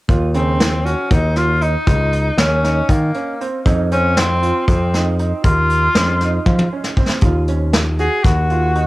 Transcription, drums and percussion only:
0.09 kick, closed hi-hat
0.34 closed hi-hat
0.60 snare, closed hi-hat
0.86 closed hi-hat
1.11 kick, closed hi-hat
1.36 snare, closed hi-hat
1.61 closed hi-hat
1.87 kick, closed hi-hat
2.13 closed hi-hat
2.38 snare, closed hi-hat
2.64 snare, closed hi-hat
2.89 kick, closed hi-hat
3.14 closed hi-hat
3.41 closed hi-hat
3.65 kick, closed hi-hat
3.91 closed hi-hat
4.17 snare, closed hi-hat
4.43 closed hi-hat
4.68 kick, closed hi-hat
4.94 snare, closed hi-hat
5.19 closed hi-hat
5.44 kick, closed hi-hat
5.70 closed hi-hat
5.95 snare, closed hi-hat
6.20 snare, closed hi-hat
6.46 kick, high tom
6.59 high tom
6.84 snare
6.97 kick
7.09 snare
7.21 kick, closed hi-hat
7.48 closed hi-hat
7.73 snare, closed hi-hat
7.98 closed hi-hat
8.24 kick, snare, closed hi-hat
8.50 closed hi-hat
8.75 closed hi-hat

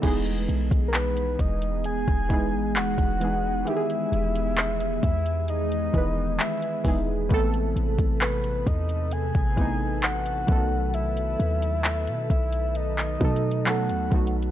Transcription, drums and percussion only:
0.03 kick, closed hi-hat, crash
0.26 closed hi-hat
0.49 closed hi-hat
0.71 kick, closed hi-hat
0.94 clap, closed hi-hat
1.17 closed hi-hat
1.39 kick, closed hi-hat
1.62 closed hi-hat
1.84 closed hi-hat
2.08 kick, closed hi-hat
2.30 kick, closed hi-hat
2.76 clap, closed hi-hat
2.98 kick, closed hi-hat
3.21 closed hi-hat
3.67 closed hi-hat
3.90 closed hi-hat
4.13 closed hi-hat
4.36 closed hi-hat
4.57 clap, closed hi-hat
4.80 closed hi-hat
5.03 kick, closed hi-hat
5.26 closed hi-hat
5.48 closed hi-hat
5.72 closed hi-hat
5.94 kick, closed hi-hat
6.40 clap, closed hi-hat
6.62 closed hi-hat
6.85 kick, open hi-hat
7.31 kick, closed hi-hat
7.54 closed hi-hat
7.77 closed hi-hat
7.99 kick, closed hi-hat
8.21 clap, closed hi-hat
8.44 closed hi-hat
8.67 kick, closed hi-hat
8.89 closed hi-hat
9.11 closed hi-hat
9.35 kick, closed hi-hat
9.57 kick, closed hi-hat
10.03 clap, closed hi-hat
10.26 closed hi-hat
10.48 kick, closed hi-hat
10.94 closed hi-hat
11.17 closed hi-hat
11.40 closed hi-hat
11.62 closed hi-hat
11.84 clap, closed hi-hat
12.07 closed hi-hat
12.30 kick, closed hi-hat
12.53 closed hi-hat
12.75 closed hi-hat
12.98 clap, closed hi-hat
13.21 kick, closed hi-hat
13.36 closed hi-hat
13.51 closed hi-hat
13.66 clap, closed hi-hat
13.89 closed hi-hat
14.12 kick, closed hi-hat, open hi-hat
14.27 closed hi-hat
14.42 closed hi-hat

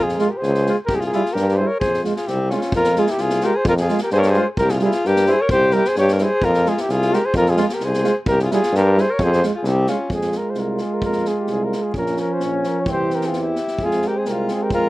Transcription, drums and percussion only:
0.09 snare
0.19 snare
0.43 snare
0.54 snare
0.66 snare
0.89 kick
1.01 snare
1.12 snare
1.25 snare
1.36 snare
1.48 snare
1.81 kick
1.93 snare
2.04 snare
2.16 snare
2.27 snare
2.50 snare
2.61 snare
2.72 kick
2.84 snare
2.96 snare
3.06 snare
3.17 snare
3.30 snare
3.41 snare
3.65 kick
3.77 snare
3.88 snare
3.98 snare
4.10 snare
4.22 snare
4.33 snare
4.57 kick
4.68 snare
4.79 snare
4.91 snare
5.05 snare
5.16 snare
5.26 snare
5.49 kick
5.70 snare
5.85 snare
5.95 snare
6.08 snare
6.18 snare
6.42 kick
6.54 snare
6.66 snare
6.77 snare
6.89 snare
7.02 snare
7.13 snare
7.34 kick
7.46 snare
7.57 snare
7.69 snare
7.80 snare
7.93 snare
8.04 snare
8.26 kick
8.39 snare
8.51 snare
8.63 snare
8.75 snare
8.98 snare
9.19 kick
9.33 snare
9.43 snare
9.64 snare
9.87 snare
10.10 kick
10.21 snare
10.32 snare
10.54 snare
10.78 snare
11.02 kick
11.12 snare
11.25 snare
11.47 snare
11.72 snare
11.94 kick
12.06 snare
12.16 snare
12.40 snare
12.63 snare
12.86 kick
13.10 snare
13.21 snare
13.33 snare
13.56 snare
13.67 snare
13.79 kick
13.91 snare
14.02 snare
14.25 snare
14.48 snare
14.70 kick

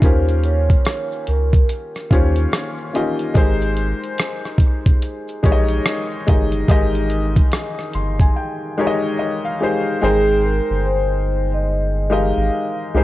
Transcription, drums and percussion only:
0.02 kick, closed hi-hat, shaker
0.28 closed hi-hat, shaker
0.43 closed hi-hat, shaker
0.70 kick, closed hi-hat, shaker
0.85 cross-stick, closed hi-hat, shaker
1.12 shaker
1.27 closed hi-hat
1.53 kick, closed hi-hat, shaker
1.69 closed hi-hat, shaker
1.95 cross-stick, closed hi-hat, shaker
2.11 kick, closed hi-hat
2.36 closed hi-hat, shaker
2.52 cross-stick, closed hi-hat, shaker
2.78 shaker
2.94 closed hi-hat, shaker
3.19 closed hi-hat, shaker
3.35 kick, closed hi-hat, shaker
3.61 closed hi-hat, shaker
3.77 closed hi-hat, shaker
4.03 closed hi-hat, shaker
4.18 cross-stick, closed hi-hat, shaker
4.45 cross-stick, shaker
4.58 kick, closed hi-hat
4.86 kick, closed hi-hat, shaker
5.02 closed hi-hat, shaker
5.28 closed hi-hat, shaker
5.44 kick, closed hi-hat
5.69 closed hi-hat, shaker
5.85 cross-stick, closed hi-hat, shaker
6.11 shaker
6.27 kick, closed hi-hat, shaker
6.52 closed hi-hat, shaker
6.68 kick, closed hi-hat, shaker
6.94 closed hi-hat, shaker
7.10 closed hi-hat, shaker
7.36 kick, closed hi-hat, shaker
7.52 cross-stick, closed hi-hat, shaker
7.78 cross-stick, shaker
7.93 closed hi-hat
8.20 kick, closed hi-hat, shaker

